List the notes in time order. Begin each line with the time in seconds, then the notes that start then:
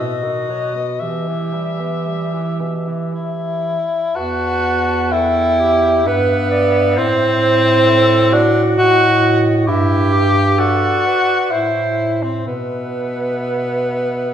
Already playing: F#4
0.00 B2 D#5
0.24 D#3
0.50 F#3
0.76 B3
1.00 E3 G4 E5
1.04 B2
1.28 E3
1.53 G3
1.81 B3
2.08 G3
2.34 E3
2.60 B2
2.87 E3
3.14 E4
4.15 E2 F#4 B4 A5
5.10 E4 A4 G5
5.60 G4
6.05 G2 B3 B4 E5
6.51 D5
6.96 A2 C4 C5
7.86 A4 E5
8.32 D4 F#4 F#5
8.77 A2 F#4 D#5
9.67 G2 E4 G4 E5
10.12 G4
10.58 F#4 A4 D5
11.05 B4
11.50 A2 E4 C5
12.23 C4
12.46 B2 B3 B4 E5